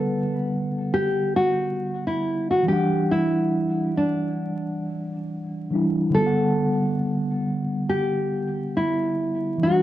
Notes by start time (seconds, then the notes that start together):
Already playing: D3 G3 B3 A4 F#5
0.94 G4
1.36 F#4
2.07 E4
2.51 F#4
2.63 E3 G3
2.68 D4 G4
2.73 F#5
3.11 E4
3.97 D4
5.71 E3 G3 D4
5.75 E4
6.10 D3 G3
6.14 B3 A4
6.20 F4
6.26 F#5
7.89 G4
8.77 E4
9.58 E3 F#3
9.63 D4 F#4
9.67 G3 F#4